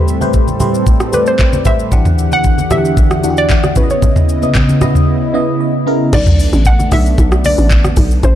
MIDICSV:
0, 0, Header, 1, 6, 480
1, 0, Start_track
1, 0, Tempo, 526316
1, 1750, Time_signature, 4, 2, 24, 8
1, 7618, End_track
2, 0, Start_track
2, 0, Title_t, "Synth pluck"
2, 0, Program_c, 0, 84
2, 0, Note_on_c, 0, 76, 87
2, 279, Note_off_c, 0, 76, 0
2, 1040, Note_on_c, 0, 71, 88
2, 1163, Note_off_c, 0, 71, 0
2, 1164, Note_on_c, 0, 72, 94
2, 1520, Note_on_c, 0, 76, 111
2, 1525, Note_off_c, 0, 72, 0
2, 2125, Note_on_c, 0, 78, 109
2, 2138, Note_off_c, 0, 76, 0
2, 2479, Note_on_c, 0, 76, 102
2, 2485, Note_off_c, 0, 78, 0
2, 3083, Note_on_c, 0, 74, 101
2, 3097, Note_off_c, 0, 76, 0
2, 3439, Note_on_c, 0, 71, 88
2, 3445, Note_off_c, 0, 74, 0
2, 3563, Note_off_c, 0, 71, 0
2, 3563, Note_on_c, 0, 73, 80
2, 4962, Note_off_c, 0, 73, 0
2, 5599, Note_on_c, 0, 74, 104
2, 6079, Note_on_c, 0, 78, 110
2, 6089, Note_off_c, 0, 74, 0
2, 6321, Note_off_c, 0, 78, 0
2, 6321, Note_on_c, 0, 76, 108
2, 6801, Note_on_c, 0, 74, 104
2, 6809, Note_off_c, 0, 76, 0
2, 7479, Note_off_c, 0, 74, 0
2, 7520, Note_on_c, 0, 72, 96
2, 7618, Note_off_c, 0, 72, 0
2, 7618, End_track
3, 0, Start_track
3, 0, Title_t, "FM electric piano"
3, 0, Program_c, 1, 5
3, 0, Note_on_c, 1, 57, 80
3, 0, Note_on_c, 1, 67, 69
3, 0, Note_on_c, 1, 71, 73
3, 0, Note_on_c, 1, 72, 83
3, 26, Control_c, 1, 64, 127
3, 117, Note_off_c, 1, 57, 0
3, 119, Note_off_c, 1, 67, 0
3, 121, Note_off_c, 1, 71, 0
3, 124, Note_off_c, 1, 72, 0
3, 190, Note_on_c, 1, 57, 88
3, 194, Note_on_c, 1, 67, 83
3, 198, Note_on_c, 1, 71, 81
3, 202, Note_on_c, 1, 72, 103
3, 478, Note_off_c, 1, 57, 0
3, 481, Note_off_c, 1, 67, 0
3, 482, Note_off_c, 1, 71, 0
3, 485, Note_off_c, 1, 72, 0
3, 546, Note_on_c, 1, 57, 91
3, 550, Note_on_c, 1, 67, 85
3, 554, Note_on_c, 1, 71, 85
3, 558, Note_on_c, 1, 72, 101
3, 936, Note_off_c, 1, 57, 0
3, 938, Note_off_c, 1, 67, 0
3, 940, Note_off_c, 1, 71, 0
3, 942, Note_off_c, 1, 72, 0
3, 1026, Note_on_c, 1, 57, 77
3, 1030, Note_on_c, 1, 67, 70
3, 1034, Note_on_c, 1, 71, 68
3, 1038, Note_on_c, 1, 74, 83
3, 1416, Note_off_c, 1, 57, 0
3, 1418, Note_off_c, 1, 67, 0
3, 1420, Note_off_c, 1, 71, 0
3, 1422, Note_off_c, 1, 74, 0
3, 1505, Note_on_c, 1, 57, 77
3, 1510, Note_on_c, 1, 67, 72
3, 1513, Note_on_c, 1, 71, 70
3, 1517, Note_on_c, 1, 72, 85
3, 1701, Note_off_c, 1, 57, 0
3, 1704, Note_off_c, 1, 67, 0
3, 1705, Note_off_c, 1, 71, 0
3, 1707, Note_off_c, 1, 72, 0
3, 1745, Note_on_c, 1, 52, 79
3, 1749, Note_on_c, 1, 62, 72
3, 1753, Note_on_c, 1, 67, 70
3, 1757, Note_on_c, 1, 78, 84
3, 1763, Control_c, 1, 64, 0
3, 1897, Control_c, 1, 64, 127
3, 2037, Note_off_c, 1, 52, 0
3, 2040, Note_off_c, 1, 62, 0
3, 2041, Note_off_c, 1, 67, 0
3, 2043, Note_off_c, 1, 78, 0
3, 2110, Note_on_c, 1, 52, 73
3, 2115, Note_on_c, 1, 62, 67
3, 2119, Note_on_c, 1, 67, 66
3, 2123, Note_on_c, 1, 78, 83
3, 2398, Note_off_c, 1, 52, 0
3, 2401, Note_off_c, 1, 62, 0
3, 2403, Note_off_c, 1, 67, 0
3, 2405, Note_off_c, 1, 78, 0
3, 2465, Note_on_c, 1, 52, 77
3, 2469, Note_on_c, 1, 62, 69
3, 2473, Note_on_c, 1, 67, 73
3, 2478, Note_on_c, 1, 76, 65
3, 2534, Note_off_c, 1, 76, 0
3, 2535, Note_on_c, 1, 78, 84
3, 2855, Note_off_c, 1, 52, 0
3, 2857, Note_off_c, 1, 62, 0
3, 2859, Note_off_c, 1, 67, 0
3, 2890, Note_off_c, 1, 78, 0
3, 2945, Note_on_c, 1, 52, 78
3, 2949, Note_on_c, 1, 62, 69
3, 2953, Note_on_c, 1, 66, 56
3, 2957, Note_on_c, 1, 78, 84
3, 3011, Note_on_c, 1, 67, 69
3, 3012, Note_off_c, 1, 66, 0
3, 3335, Note_off_c, 1, 52, 0
3, 3337, Note_off_c, 1, 62, 0
3, 3341, Note_off_c, 1, 78, 0
3, 3368, Note_off_c, 1, 67, 0
3, 3427, Note_on_c, 1, 49, 80
3, 3431, Note_on_c, 1, 59, 71
3, 3435, Note_on_c, 1, 64, 72
3, 3439, Note_on_c, 1, 73, 71
3, 3443, Control_c, 1, 64, 0
3, 3494, Note_off_c, 1, 73, 0
3, 3497, Note_on_c, 1, 75, 84
3, 3577, Control_c, 1, 64, 127
3, 3908, Note_off_c, 1, 49, 0
3, 3910, Note_off_c, 1, 59, 0
3, 3912, Note_off_c, 1, 64, 0
3, 3943, Note_off_c, 1, 75, 0
3, 4031, Note_on_c, 1, 49, 75
3, 4035, Note_on_c, 1, 59, 67
3, 4039, Note_on_c, 1, 64, 68
3, 4043, Note_on_c, 1, 75, 85
3, 4319, Note_off_c, 1, 49, 0
3, 4321, Note_off_c, 1, 59, 0
3, 4323, Note_off_c, 1, 64, 0
3, 4325, Note_off_c, 1, 75, 0
3, 4386, Note_on_c, 1, 49, 87
3, 4390, Note_on_c, 1, 59, 84
3, 4394, Note_on_c, 1, 64, 87
3, 4399, Note_on_c, 1, 75, 100
3, 4776, Note_off_c, 1, 49, 0
3, 4778, Note_off_c, 1, 59, 0
3, 4780, Note_off_c, 1, 64, 0
3, 4782, Note_off_c, 1, 75, 0
3, 4865, Note_on_c, 1, 49, 89
3, 4869, Note_on_c, 1, 59, 83
3, 4873, Note_on_c, 1, 64, 81
3, 4877, Note_on_c, 1, 75, 94
3, 5101, Note_off_c, 1, 75, 0
3, 5112, Note_on_c, 1, 75, 74
3, 5255, Note_off_c, 1, 49, 0
3, 5257, Note_off_c, 1, 59, 0
3, 5259, Note_off_c, 1, 64, 0
3, 5334, Note_off_c, 1, 75, 0
3, 5346, Note_on_c, 1, 49, 90
3, 5350, Note_on_c, 1, 59, 82
3, 5352, Note_on_c, 1, 82, 69
3, 5354, Note_on_c, 1, 64, 80
3, 5358, Note_on_c, 1, 70, 102
3, 5542, Note_off_c, 1, 49, 0
3, 5544, Note_off_c, 1, 59, 0
3, 5546, Note_off_c, 1, 64, 0
3, 5548, Note_off_c, 1, 70, 0
3, 5574, Note_off_c, 1, 82, 0
3, 5602, Control_c, 1, 64, 0
3, 7618, End_track
4, 0, Start_track
4, 0, Title_t, "Analog synth pad"
4, 0, Program_c, 2, 89
4, 0, Note_on_c, 2, 45, 76
4, 0, Note_on_c, 2, 55, 72
4, 0, Note_on_c, 2, 60, 71
4, 0, Note_on_c, 2, 69, 86
4, 1731, Note_off_c, 2, 45, 0
4, 1731, Note_off_c, 2, 55, 0
4, 1731, Note_off_c, 2, 60, 0
4, 1731, Note_off_c, 2, 69, 0
4, 1749, Note_on_c, 2, 40, 80
4, 1750, Note_on_c, 2, 50, 71
4, 1750, Note_on_c, 2, 67, 72
4, 1750, Note_on_c, 2, 78, 86
4, 3413, Note_off_c, 2, 40, 0
4, 3413, Note_off_c, 2, 50, 0
4, 3413, Note_off_c, 2, 67, 0
4, 3413, Note_off_c, 2, 78, 0
4, 3431, Note_on_c, 2, 49, 81
4, 3431, Note_on_c, 2, 59, 76
4, 3431, Note_on_c, 2, 64, 76
4, 3431, Note_on_c, 2, 75, 86
4, 5569, Note_off_c, 2, 49, 0
4, 5569, Note_off_c, 2, 59, 0
4, 5569, Note_off_c, 2, 64, 0
4, 5569, Note_off_c, 2, 75, 0
4, 5592, Note_on_c, 2, 57, 81
4, 5592, Note_on_c, 2, 62, 87
4, 5593, Note_on_c, 2, 59, 75
4, 7492, Note_off_c, 2, 57, 0
4, 7492, Note_off_c, 2, 59, 0
4, 7492, Note_off_c, 2, 62, 0
4, 7511, Note_on_c, 2, 57, 78
4, 7511, Note_on_c, 2, 60, 73
4, 7511, Note_on_c, 2, 67, 90
4, 7618, Note_off_c, 2, 57, 0
4, 7618, Note_off_c, 2, 60, 0
4, 7618, Note_off_c, 2, 67, 0
4, 7618, End_track
5, 0, Start_track
5, 0, Title_t, "Log drum bass"
5, 0, Program_c, 3, 39
5, 5590, Note_on_c, 3, 35, 109
5, 5930, Note_off_c, 3, 35, 0
5, 5954, Note_on_c, 3, 33, 90
5, 6286, Note_off_c, 3, 33, 0
5, 6310, Note_on_c, 3, 35, 94
5, 6534, Note_off_c, 3, 35, 0
5, 6550, Note_on_c, 3, 35, 97
5, 6890, Note_off_c, 3, 35, 0
5, 6915, Note_on_c, 3, 33, 87
5, 7246, Note_off_c, 3, 33, 0
5, 7269, Note_on_c, 3, 35, 92
5, 7493, Note_off_c, 3, 35, 0
5, 7509, Note_on_c, 3, 33, 111
5, 7618, Note_off_c, 3, 33, 0
5, 7618, End_track
6, 0, Start_track
6, 0, Title_t, "Drums"
6, 72, Note_on_c, 9, 82, 80
6, 163, Note_off_c, 9, 82, 0
6, 193, Note_on_c, 9, 63, 74
6, 195, Note_on_c, 9, 82, 50
6, 284, Note_off_c, 9, 63, 0
6, 287, Note_off_c, 9, 82, 0
6, 304, Note_on_c, 9, 82, 75
6, 310, Note_on_c, 9, 36, 84
6, 395, Note_off_c, 9, 82, 0
6, 401, Note_off_c, 9, 36, 0
6, 433, Note_on_c, 9, 63, 72
6, 436, Note_on_c, 9, 82, 55
6, 524, Note_off_c, 9, 63, 0
6, 527, Note_off_c, 9, 82, 0
6, 548, Note_on_c, 9, 82, 85
6, 549, Note_on_c, 9, 63, 73
6, 549, Note_on_c, 9, 64, 70
6, 639, Note_off_c, 9, 82, 0
6, 640, Note_off_c, 9, 63, 0
6, 640, Note_off_c, 9, 64, 0
6, 679, Note_on_c, 9, 82, 55
6, 770, Note_off_c, 9, 82, 0
6, 789, Note_on_c, 9, 82, 78
6, 790, Note_on_c, 9, 36, 127
6, 881, Note_off_c, 9, 36, 0
6, 881, Note_off_c, 9, 82, 0
6, 913, Note_on_c, 9, 82, 48
6, 914, Note_on_c, 9, 37, 92
6, 1004, Note_off_c, 9, 82, 0
6, 1005, Note_off_c, 9, 37, 0
6, 1029, Note_on_c, 9, 82, 91
6, 1031, Note_on_c, 9, 63, 68
6, 1121, Note_off_c, 9, 82, 0
6, 1122, Note_off_c, 9, 63, 0
6, 1152, Note_on_c, 9, 82, 51
6, 1244, Note_off_c, 9, 82, 0
6, 1266, Note_on_c, 9, 82, 67
6, 1269, Note_on_c, 9, 36, 100
6, 1270, Note_on_c, 9, 39, 94
6, 1358, Note_off_c, 9, 82, 0
6, 1361, Note_off_c, 9, 36, 0
6, 1361, Note_off_c, 9, 39, 0
6, 1394, Note_on_c, 9, 82, 56
6, 1396, Note_on_c, 9, 63, 82
6, 1485, Note_off_c, 9, 82, 0
6, 1487, Note_off_c, 9, 63, 0
6, 1506, Note_on_c, 9, 82, 87
6, 1509, Note_on_c, 9, 36, 92
6, 1510, Note_on_c, 9, 63, 54
6, 1510, Note_on_c, 9, 64, 76
6, 1597, Note_off_c, 9, 82, 0
6, 1600, Note_off_c, 9, 36, 0
6, 1601, Note_off_c, 9, 63, 0
6, 1601, Note_off_c, 9, 64, 0
6, 1636, Note_on_c, 9, 82, 61
6, 1727, Note_off_c, 9, 82, 0
6, 1749, Note_on_c, 9, 36, 103
6, 1749, Note_on_c, 9, 82, 84
6, 1751, Note_on_c, 9, 64, 72
6, 1841, Note_off_c, 9, 36, 0
6, 1841, Note_off_c, 9, 82, 0
6, 1842, Note_off_c, 9, 64, 0
6, 1873, Note_on_c, 9, 45, 91
6, 1874, Note_on_c, 9, 63, 71
6, 1875, Note_on_c, 9, 82, 55
6, 1964, Note_off_c, 9, 45, 0
6, 1965, Note_off_c, 9, 63, 0
6, 1966, Note_off_c, 9, 82, 0
6, 1992, Note_on_c, 9, 82, 84
6, 2083, Note_off_c, 9, 82, 0
6, 2112, Note_on_c, 9, 63, 73
6, 2115, Note_on_c, 9, 82, 50
6, 2204, Note_off_c, 9, 63, 0
6, 2206, Note_off_c, 9, 82, 0
6, 2224, Note_on_c, 9, 82, 78
6, 2230, Note_on_c, 9, 36, 79
6, 2315, Note_off_c, 9, 82, 0
6, 2321, Note_off_c, 9, 36, 0
6, 2354, Note_on_c, 9, 63, 71
6, 2357, Note_on_c, 9, 82, 55
6, 2445, Note_off_c, 9, 63, 0
6, 2448, Note_off_c, 9, 82, 0
6, 2468, Note_on_c, 9, 63, 72
6, 2468, Note_on_c, 9, 64, 71
6, 2468, Note_on_c, 9, 82, 85
6, 2470, Note_on_c, 9, 37, 88
6, 2559, Note_off_c, 9, 63, 0
6, 2559, Note_off_c, 9, 64, 0
6, 2559, Note_off_c, 9, 82, 0
6, 2561, Note_off_c, 9, 37, 0
6, 2600, Note_on_c, 9, 82, 53
6, 2691, Note_off_c, 9, 82, 0
6, 2710, Note_on_c, 9, 36, 127
6, 2710, Note_on_c, 9, 82, 78
6, 2801, Note_off_c, 9, 82, 0
6, 2802, Note_off_c, 9, 36, 0
6, 2834, Note_on_c, 9, 82, 47
6, 2835, Note_on_c, 9, 37, 99
6, 2925, Note_off_c, 9, 82, 0
6, 2926, Note_off_c, 9, 37, 0
6, 2951, Note_on_c, 9, 63, 69
6, 2951, Note_on_c, 9, 82, 93
6, 3042, Note_off_c, 9, 63, 0
6, 3043, Note_off_c, 9, 82, 0
6, 3074, Note_on_c, 9, 82, 51
6, 3165, Note_off_c, 9, 82, 0
6, 3188, Note_on_c, 9, 82, 69
6, 3190, Note_on_c, 9, 36, 96
6, 3192, Note_on_c, 9, 39, 97
6, 3279, Note_off_c, 9, 82, 0
6, 3281, Note_off_c, 9, 36, 0
6, 3283, Note_off_c, 9, 39, 0
6, 3315, Note_on_c, 9, 82, 57
6, 3316, Note_on_c, 9, 37, 87
6, 3316, Note_on_c, 9, 63, 78
6, 3406, Note_off_c, 9, 82, 0
6, 3407, Note_off_c, 9, 37, 0
6, 3407, Note_off_c, 9, 63, 0
6, 3427, Note_on_c, 9, 82, 90
6, 3429, Note_on_c, 9, 36, 92
6, 3430, Note_on_c, 9, 63, 55
6, 3430, Note_on_c, 9, 64, 77
6, 3518, Note_off_c, 9, 82, 0
6, 3521, Note_off_c, 9, 36, 0
6, 3521, Note_off_c, 9, 63, 0
6, 3521, Note_off_c, 9, 64, 0
6, 3557, Note_on_c, 9, 82, 59
6, 3648, Note_off_c, 9, 82, 0
6, 3670, Note_on_c, 9, 36, 102
6, 3670, Note_on_c, 9, 64, 77
6, 3670, Note_on_c, 9, 82, 81
6, 3761, Note_off_c, 9, 36, 0
6, 3761, Note_off_c, 9, 82, 0
6, 3762, Note_off_c, 9, 64, 0
6, 3793, Note_on_c, 9, 45, 92
6, 3795, Note_on_c, 9, 63, 68
6, 3796, Note_on_c, 9, 82, 55
6, 3885, Note_off_c, 9, 45, 0
6, 3886, Note_off_c, 9, 63, 0
6, 3887, Note_off_c, 9, 82, 0
6, 3912, Note_on_c, 9, 82, 82
6, 4003, Note_off_c, 9, 82, 0
6, 4033, Note_on_c, 9, 63, 69
6, 4036, Note_on_c, 9, 82, 49
6, 4124, Note_off_c, 9, 63, 0
6, 4127, Note_off_c, 9, 82, 0
6, 4145, Note_on_c, 9, 82, 78
6, 4149, Note_on_c, 9, 39, 91
6, 4149, Note_on_c, 9, 64, 74
6, 4151, Note_on_c, 9, 36, 77
6, 4236, Note_off_c, 9, 82, 0
6, 4240, Note_off_c, 9, 39, 0
6, 4240, Note_off_c, 9, 64, 0
6, 4242, Note_off_c, 9, 36, 0
6, 4273, Note_on_c, 9, 63, 70
6, 4278, Note_on_c, 9, 82, 53
6, 4365, Note_off_c, 9, 63, 0
6, 4369, Note_off_c, 9, 82, 0
6, 4389, Note_on_c, 9, 63, 72
6, 4389, Note_on_c, 9, 64, 73
6, 4389, Note_on_c, 9, 82, 84
6, 4391, Note_on_c, 9, 37, 90
6, 4480, Note_off_c, 9, 82, 0
6, 4481, Note_off_c, 9, 63, 0
6, 4481, Note_off_c, 9, 64, 0
6, 4482, Note_off_c, 9, 37, 0
6, 4515, Note_on_c, 9, 45, 70
6, 4521, Note_on_c, 9, 82, 57
6, 4606, Note_off_c, 9, 45, 0
6, 4612, Note_off_c, 9, 82, 0
6, 5590, Note_on_c, 9, 36, 108
6, 5590, Note_on_c, 9, 49, 98
6, 5590, Note_on_c, 9, 82, 82
6, 5591, Note_on_c, 9, 64, 79
6, 5681, Note_off_c, 9, 36, 0
6, 5681, Note_off_c, 9, 49, 0
6, 5681, Note_off_c, 9, 82, 0
6, 5682, Note_off_c, 9, 64, 0
6, 5713, Note_on_c, 9, 63, 71
6, 5714, Note_on_c, 9, 45, 94
6, 5716, Note_on_c, 9, 82, 55
6, 5805, Note_off_c, 9, 45, 0
6, 5805, Note_off_c, 9, 63, 0
6, 5807, Note_off_c, 9, 82, 0
6, 5833, Note_on_c, 9, 46, 49
6, 5833, Note_on_c, 9, 82, 85
6, 5924, Note_off_c, 9, 46, 0
6, 5924, Note_off_c, 9, 82, 0
6, 5953, Note_on_c, 9, 63, 72
6, 5956, Note_on_c, 9, 82, 51
6, 6044, Note_off_c, 9, 63, 0
6, 6047, Note_off_c, 9, 82, 0
6, 6065, Note_on_c, 9, 82, 80
6, 6071, Note_on_c, 9, 36, 82
6, 6156, Note_off_c, 9, 82, 0
6, 6162, Note_off_c, 9, 36, 0
6, 6193, Note_on_c, 9, 63, 71
6, 6198, Note_on_c, 9, 82, 56
6, 6284, Note_off_c, 9, 63, 0
6, 6289, Note_off_c, 9, 82, 0
6, 6309, Note_on_c, 9, 46, 52
6, 6309, Note_on_c, 9, 63, 75
6, 6309, Note_on_c, 9, 64, 75
6, 6309, Note_on_c, 9, 82, 90
6, 6310, Note_on_c, 9, 37, 94
6, 6400, Note_off_c, 9, 46, 0
6, 6400, Note_off_c, 9, 82, 0
6, 6401, Note_off_c, 9, 63, 0
6, 6401, Note_off_c, 9, 64, 0
6, 6402, Note_off_c, 9, 37, 0
6, 6440, Note_on_c, 9, 82, 58
6, 6531, Note_off_c, 9, 82, 0
6, 6550, Note_on_c, 9, 36, 127
6, 6550, Note_on_c, 9, 82, 80
6, 6641, Note_off_c, 9, 36, 0
6, 6641, Note_off_c, 9, 82, 0
6, 6674, Note_on_c, 9, 82, 48
6, 6675, Note_on_c, 9, 37, 100
6, 6765, Note_off_c, 9, 82, 0
6, 6766, Note_off_c, 9, 37, 0
6, 6790, Note_on_c, 9, 46, 54
6, 6790, Note_on_c, 9, 82, 96
6, 6792, Note_on_c, 9, 63, 71
6, 6882, Note_off_c, 9, 46, 0
6, 6882, Note_off_c, 9, 82, 0
6, 6883, Note_off_c, 9, 63, 0
6, 6913, Note_on_c, 9, 82, 54
6, 7004, Note_off_c, 9, 82, 0
6, 7026, Note_on_c, 9, 82, 70
6, 7029, Note_on_c, 9, 36, 100
6, 7030, Note_on_c, 9, 39, 97
6, 7118, Note_off_c, 9, 82, 0
6, 7120, Note_off_c, 9, 36, 0
6, 7121, Note_off_c, 9, 39, 0
6, 7154, Note_on_c, 9, 82, 59
6, 7155, Note_on_c, 9, 37, 96
6, 7156, Note_on_c, 9, 63, 83
6, 7245, Note_off_c, 9, 82, 0
6, 7246, Note_off_c, 9, 37, 0
6, 7248, Note_off_c, 9, 63, 0
6, 7265, Note_on_c, 9, 46, 52
6, 7265, Note_on_c, 9, 82, 90
6, 7268, Note_on_c, 9, 36, 96
6, 7271, Note_on_c, 9, 63, 58
6, 7271, Note_on_c, 9, 64, 75
6, 7356, Note_off_c, 9, 46, 0
6, 7356, Note_off_c, 9, 82, 0
6, 7360, Note_off_c, 9, 36, 0
6, 7362, Note_off_c, 9, 63, 0
6, 7362, Note_off_c, 9, 64, 0
6, 7395, Note_on_c, 9, 82, 59
6, 7486, Note_off_c, 9, 82, 0
6, 7508, Note_on_c, 9, 82, 89
6, 7509, Note_on_c, 9, 36, 108
6, 7511, Note_on_c, 9, 64, 83
6, 7600, Note_off_c, 9, 36, 0
6, 7600, Note_off_c, 9, 82, 0
6, 7602, Note_off_c, 9, 64, 0
6, 7618, End_track
0, 0, End_of_file